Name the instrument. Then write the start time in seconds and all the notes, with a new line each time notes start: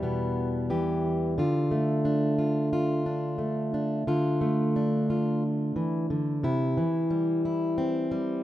steel-string acoustic guitar
Already playing: E2 E3 G3
0.03 B2 B3
0.70 E3 G4
1.38 D3 F4
1.71 A3
2.05 D4
2.38 F4
2.73 F4
3.06 D4
3.38 A3
3.74 D4
4.07 D3 F4
4.41 A3
4.76 D4
5.10 F4
5.76 E3
6.10 D3
6.43 C3 E4
6.77 E3
7.10 G3
7.45 E4
7.78 C4
8.11 G3